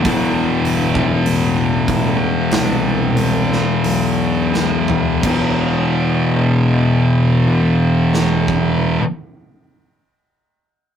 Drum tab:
CC |----------------|x---------------|
HH |o-o-o-o-o-o-o---|----------------|
SD |--------o--o--o-|--------o-------|
FT |---------------o|----------------|
BD |o--o--o---------|o--------o------|